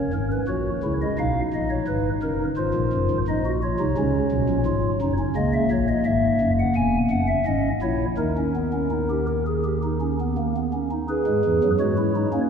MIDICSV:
0, 0, Header, 1, 2, 480
1, 0, Start_track
1, 0, Tempo, 700935
1, 1765, Time_signature, 4, 2, 24, 8
1, 5123, Tempo, 723764
1, 7523, Tempo, 705053
1, 8474, End_track
2, 0, Start_track
2, 0, Title_t, "Pipe organ"
2, 0, Program_c, 0, 19
2, 0, Note_on_c, 0, 61, 67
2, 0, Note_on_c, 0, 73, 63
2, 73, Note_off_c, 0, 73, 0
2, 91, Note_on_c, 0, 44, 57
2, 92, Note_on_c, 0, 32, 59
2, 93, Note_on_c, 0, 70, 67
2, 194, Note_off_c, 0, 70, 0
2, 220, Note_on_c, 0, 71, 71
2, 240, Note_off_c, 0, 32, 0
2, 240, Note_off_c, 0, 44, 0
2, 260, Note_off_c, 0, 61, 0
2, 318, Note_off_c, 0, 71, 0
2, 328, Note_on_c, 0, 66, 58
2, 329, Note_on_c, 0, 73, 69
2, 330, Note_on_c, 0, 46, 62
2, 331, Note_on_c, 0, 34, 63
2, 477, Note_off_c, 0, 66, 0
2, 479, Note_off_c, 0, 46, 0
2, 480, Note_off_c, 0, 34, 0
2, 571, Note_on_c, 0, 37, 61
2, 572, Note_on_c, 0, 49, 60
2, 573, Note_on_c, 0, 64, 59
2, 639, Note_off_c, 0, 73, 0
2, 697, Note_on_c, 0, 75, 66
2, 719, Note_off_c, 0, 37, 0
2, 720, Note_off_c, 0, 49, 0
2, 720, Note_off_c, 0, 64, 0
2, 797, Note_off_c, 0, 75, 0
2, 812, Note_on_c, 0, 47, 68
2, 813, Note_on_c, 0, 77, 79
2, 814, Note_on_c, 0, 35, 69
2, 815, Note_on_c, 0, 63, 68
2, 959, Note_off_c, 0, 47, 0
2, 960, Note_off_c, 0, 77, 0
2, 961, Note_off_c, 0, 35, 0
2, 1052, Note_on_c, 0, 34, 61
2, 1053, Note_on_c, 0, 46, 63
2, 1055, Note_on_c, 0, 75, 69
2, 1155, Note_off_c, 0, 75, 0
2, 1165, Note_on_c, 0, 73, 76
2, 1199, Note_off_c, 0, 34, 0
2, 1200, Note_off_c, 0, 46, 0
2, 1269, Note_off_c, 0, 73, 0
2, 1284, Note_on_c, 0, 32, 68
2, 1284, Note_on_c, 0, 71, 81
2, 1285, Note_on_c, 0, 44, 67
2, 1433, Note_off_c, 0, 32, 0
2, 1433, Note_off_c, 0, 71, 0
2, 1434, Note_off_c, 0, 44, 0
2, 1524, Note_on_c, 0, 30, 65
2, 1524, Note_on_c, 0, 70, 70
2, 1526, Note_on_c, 0, 42, 63
2, 1636, Note_off_c, 0, 63, 0
2, 1673, Note_off_c, 0, 30, 0
2, 1673, Note_off_c, 0, 70, 0
2, 1675, Note_off_c, 0, 42, 0
2, 1759, Note_on_c, 0, 44, 76
2, 1760, Note_on_c, 0, 32, 84
2, 1761, Note_on_c, 0, 72, 72
2, 1762, Note_on_c, 0, 65, 73
2, 1865, Note_off_c, 0, 32, 0
2, 1865, Note_off_c, 0, 44, 0
2, 1877, Note_on_c, 0, 46, 73
2, 1880, Note_on_c, 0, 34, 75
2, 1984, Note_off_c, 0, 46, 0
2, 1985, Note_off_c, 0, 34, 0
2, 2004, Note_on_c, 0, 42, 73
2, 2008, Note_on_c, 0, 30, 75
2, 2108, Note_off_c, 0, 42, 0
2, 2110, Note_off_c, 0, 30, 0
2, 2127, Note_on_c, 0, 44, 80
2, 2128, Note_on_c, 0, 32, 79
2, 2175, Note_off_c, 0, 72, 0
2, 2176, Note_off_c, 0, 65, 0
2, 2229, Note_off_c, 0, 44, 0
2, 2230, Note_off_c, 0, 32, 0
2, 2244, Note_on_c, 0, 46, 78
2, 2247, Note_on_c, 0, 34, 78
2, 2248, Note_on_c, 0, 63, 75
2, 2248, Note_on_c, 0, 75, 68
2, 2349, Note_off_c, 0, 63, 0
2, 2368, Note_on_c, 0, 66, 74
2, 2395, Note_off_c, 0, 75, 0
2, 2469, Note_off_c, 0, 66, 0
2, 2486, Note_on_c, 0, 73, 71
2, 2487, Note_on_c, 0, 65, 69
2, 2552, Note_off_c, 0, 46, 0
2, 2554, Note_off_c, 0, 34, 0
2, 2588, Note_off_c, 0, 65, 0
2, 2599, Note_on_c, 0, 63, 71
2, 2600, Note_on_c, 0, 36, 82
2, 2600, Note_on_c, 0, 48, 76
2, 2703, Note_off_c, 0, 63, 0
2, 2704, Note_off_c, 0, 36, 0
2, 2704, Note_off_c, 0, 48, 0
2, 2723, Note_on_c, 0, 49, 94
2, 2723, Note_on_c, 0, 61, 81
2, 2725, Note_on_c, 0, 37, 93
2, 2871, Note_off_c, 0, 49, 0
2, 2872, Note_off_c, 0, 37, 0
2, 2956, Note_on_c, 0, 35, 83
2, 2957, Note_on_c, 0, 47, 86
2, 3061, Note_off_c, 0, 35, 0
2, 3061, Note_off_c, 0, 47, 0
2, 3076, Note_on_c, 0, 34, 80
2, 3078, Note_on_c, 0, 46, 87
2, 3133, Note_off_c, 0, 61, 0
2, 3181, Note_off_c, 0, 34, 0
2, 3182, Note_off_c, 0, 46, 0
2, 3190, Note_on_c, 0, 44, 91
2, 3192, Note_on_c, 0, 32, 87
2, 3193, Note_on_c, 0, 65, 82
2, 3341, Note_off_c, 0, 44, 0
2, 3342, Note_off_c, 0, 32, 0
2, 3343, Note_off_c, 0, 65, 0
2, 3435, Note_on_c, 0, 30, 83
2, 3435, Note_on_c, 0, 42, 86
2, 3436, Note_on_c, 0, 63, 72
2, 3512, Note_off_c, 0, 73, 0
2, 3539, Note_off_c, 0, 63, 0
2, 3551, Note_on_c, 0, 61, 81
2, 3584, Note_off_c, 0, 42, 0
2, 3585, Note_off_c, 0, 30, 0
2, 3657, Note_off_c, 0, 61, 0
2, 3670, Note_on_c, 0, 75, 93
2, 3672, Note_on_c, 0, 37, 81
2, 3672, Note_on_c, 0, 49, 82
2, 3673, Note_on_c, 0, 58, 78
2, 3777, Note_off_c, 0, 75, 0
2, 3792, Note_on_c, 0, 76, 84
2, 3823, Note_off_c, 0, 37, 0
2, 3823, Note_off_c, 0, 49, 0
2, 3898, Note_off_c, 0, 76, 0
2, 3910, Note_on_c, 0, 46, 80
2, 3911, Note_on_c, 0, 34, 78
2, 3911, Note_on_c, 0, 73, 87
2, 4018, Note_off_c, 0, 73, 0
2, 4029, Note_on_c, 0, 75, 85
2, 4062, Note_off_c, 0, 34, 0
2, 4062, Note_off_c, 0, 46, 0
2, 4137, Note_off_c, 0, 75, 0
2, 4143, Note_on_c, 0, 76, 85
2, 4148, Note_on_c, 0, 44, 72
2, 4149, Note_on_c, 0, 32, 75
2, 4300, Note_off_c, 0, 44, 0
2, 4301, Note_off_c, 0, 32, 0
2, 4389, Note_on_c, 0, 30, 72
2, 4389, Note_on_c, 0, 42, 76
2, 4459, Note_off_c, 0, 76, 0
2, 4516, Note_on_c, 0, 78, 82
2, 4540, Note_off_c, 0, 30, 0
2, 4541, Note_off_c, 0, 42, 0
2, 4620, Note_off_c, 0, 78, 0
2, 4628, Note_on_c, 0, 28, 82
2, 4630, Note_on_c, 0, 80, 95
2, 4631, Note_on_c, 0, 40, 76
2, 4781, Note_off_c, 0, 28, 0
2, 4782, Note_off_c, 0, 80, 0
2, 4783, Note_off_c, 0, 40, 0
2, 4866, Note_on_c, 0, 30, 69
2, 4866, Note_on_c, 0, 42, 71
2, 4867, Note_on_c, 0, 78, 86
2, 4918, Note_off_c, 0, 58, 0
2, 4977, Note_off_c, 0, 78, 0
2, 4986, Note_on_c, 0, 76, 86
2, 5021, Note_off_c, 0, 30, 0
2, 5021, Note_off_c, 0, 42, 0
2, 5097, Note_off_c, 0, 76, 0
2, 5108, Note_on_c, 0, 32, 73
2, 5109, Note_on_c, 0, 44, 76
2, 5111, Note_on_c, 0, 75, 86
2, 5113, Note_on_c, 0, 61, 76
2, 5261, Note_off_c, 0, 32, 0
2, 5261, Note_off_c, 0, 44, 0
2, 5263, Note_off_c, 0, 75, 0
2, 5264, Note_off_c, 0, 61, 0
2, 5348, Note_on_c, 0, 34, 67
2, 5349, Note_on_c, 0, 46, 70
2, 5349, Note_on_c, 0, 64, 68
2, 5350, Note_on_c, 0, 73, 78
2, 5502, Note_off_c, 0, 34, 0
2, 5502, Note_off_c, 0, 46, 0
2, 5502, Note_off_c, 0, 64, 0
2, 5503, Note_off_c, 0, 73, 0
2, 5584, Note_on_c, 0, 39, 69
2, 5585, Note_on_c, 0, 63, 68
2, 5585, Note_on_c, 0, 70, 68
2, 5587, Note_on_c, 0, 51, 70
2, 5696, Note_off_c, 0, 63, 0
2, 5714, Note_on_c, 0, 61, 60
2, 5821, Note_off_c, 0, 61, 0
2, 5834, Note_on_c, 0, 59, 62
2, 5941, Note_off_c, 0, 59, 0
2, 5950, Note_on_c, 0, 61, 62
2, 6058, Note_off_c, 0, 61, 0
2, 6068, Note_on_c, 0, 63, 62
2, 6177, Note_off_c, 0, 63, 0
2, 6195, Note_on_c, 0, 67, 59
2, 6299, Note_off_c, 0, 70, 0
2, 6301, Note_off_c, 0, 67, 0
2, 6313, Note_on_c, 0, 70, 66
2, 6420, Note_off_c, 0, 70, 0
2, 6441, Note_on_c, 0, 68, 63
2, 6545, Note_off_c, 0, 68, 0
2, 6555, Note_on_c, 0, 67, 72
2, 6661, Note_off_c, 0, 67, 0
2, 6681, Note_on_c, 0, 63, 64
2, 6785, Note_off_c, 0, 63, 0
2, 6799, Note_on_c, 0, 61, 61
2, 6904, Note_off_c, 0, 61, 0
2, 6929, Note_on_c, 0, 59, 61
2, 7029, Note_off_c, 0, 59, 0
2, 7037, Note_off_c, 0, 39, 0
2, 7039, Note_off_c, 0, 51, 0
2, 7041, Note_on_c, 0, 58, 68
2, 7145, Note_off_c, 0, 58, 0
2, 7167, Note_on_c, 0, 59, 63
2, 7269, Note_off_c, 0, 59, 0
2, 7278, Note_on_c, 0, 61, 65
2, 7383, Note_off_c, 0, 61, 0
2, 7397, Note_on_c, 0, 63, 69
2, 7502, Note_off_c, 0, 63, 0
2, 7515, Note_on_c, 0, 68, 76
2, 7517, Note_on_c, 0, 71, 75
2, 7637, Note_on_c, 0, 56, 84
2, 7638, Note_on_c, 0, 44, 89
2, 7743, Note_off_c, 0, 56, 0
2, 7744, Note_off_c, 0, 44, 0
2, 7760, Note_on_c, 0, 40, 83
2, 7761, Note_on_c, 0, 52, 85
2, 7865, Note_off_c, 0, 40, 0
2, 7865, Note_off_c, 0, 52, 0
2, 7888, Note_on_c, 0, 42, 89
2, 7888, Note_on_c, 0, 54, 82
2, 7931, Note_off_c, 0, 68, 0
2, 7933, Note_off_c, 0, 71, 0
2, 7989, Note_off_c, 0, 42, 0
2, 7989, Note_off_c, 0, 54, 0
2, 7999, Note_on_c, 0, 66, 68
2, 8000, Note_on_c, 0, 73, 66
2, 8001, Note_on_c, 0, 44, 83
2, 8001, Note_on_c, 0, 56, 84
2, 8104, Note_off_c, 0, 66, 0
2, 8120, Note_on_c, 0, 64, 71
2, 8224, Note_off_c, 0, 64, 0
2, 8242, Note_on_c, 0, 63, 69
2, 8310, Note_off_c, 0, 44, 0
2, 8310, Note_off_c, 0, 56, 0
2, 8345, Note_off_c, 0, 63, 0
2, 8358, Note_on_c, 0, 61, 69
2, 8361, Note_on_c, 0, 58, 88
2, 8413, Note_off_c, 0, 73, 0
2, 8463, Note_off_c, 0, 61, 0
2, 8464, Note_off_c, 0, 58, 0
2, 8474, End_track
0, 0, End_of_file